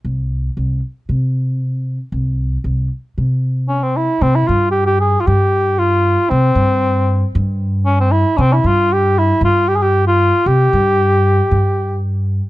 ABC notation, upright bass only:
X:1
M:4/4
L:1/8
Q:1/4=115
K:none
V:1 name="Upright bass" clef=bass
C,,2 C,, z C,4 | C,,2 C,, z C,4 | C, G,,3 G,,4 | C, G,,3 G,,4 |
C, G,,3 G,,4 | C, G,,3 G,,4 |]